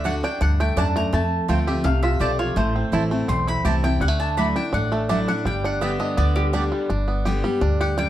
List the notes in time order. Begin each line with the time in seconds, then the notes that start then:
Already playing: D2 A3
0.04 D3 A3 D4 F#4 D5 F#5
0.23 D4 F#4 G5
0.41 D2 G2 D4 F#5
0.60 A3 G5
0.76 E2 F#2 A3 D4 F#4 D5 F#5 A5
0.96 A3 A#5
1.12 F2 A3 A5
1.48 D2 F3 A3 C4 F4 C5 G5 A5
1.67 C4 F4 G4 E5
1.84 C2 C3 A3 F5
2.03 F4 E5
2.19 B1 F3 A3 C4 F4 G4 C5 D5 A5
2.39 F4 C#5
2.56 A1 A2 A3 C5
2.76 C4
2.92 A1 E3 A3 C4 E4 C5 A5
3.11 A3 C4 E4
3.28 B1 E2 C4 C6
3.47 E4 B5
3.65 C2 E3 A3 C4 E4 G4 C5 A5
3.84 C4 E4 G5
4.00 D2 D3 G3 F#5
4.08 A3
4.20 D4 A5
4.37 F#3 A3 D4 E4 D5 F#5 B5
4.56 D4 E4 G5
4.73 A1 A2 D4 F#5
4.92 A3 A4
5.09 F#3 A3 D4 E4 D5 F#5
5.28 D4 E4 F#5
5.45 G1 G2 G3 G5
5.64 D4 F#5
5.81 D3 G3 B3 G4 D5 E5 G5
6.00 D4 D#5
6.17 D2 D3 B3 D5
6.36 G3 G4
6.53 D3 G3 B3 D4 G4 D5 G5
6.72 G3
6.89 G1 G2 D4
7.08 B3
7.25 D3 G3 B3 G4
7.44 G3 B3 G4
7.61 D2 G2 D4
7.81 G4 F#5
7.98 F#2 G3 G5